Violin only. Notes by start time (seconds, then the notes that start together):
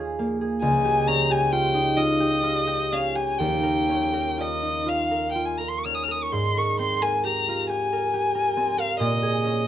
0.62 G#5
1.08 A#5
1.32 G#5
1.53 G5
1.96 D#5
2.93 F5
3.16 G#5
3.39 G5
4.41 D#5
4.89 F5
5.31 G5
5.45 G#5
5.58 A#5
5.68 C6
5.78 C#6
5.85 F6
5.94 D#6
6.03 F6
6.11 D#6
6.23 C#6
6.32 C6
6.58 C#6
6.79 C6
7.02 G#5
7.26 A#5
7.70 G#5
8.80 F5
9.00 D#5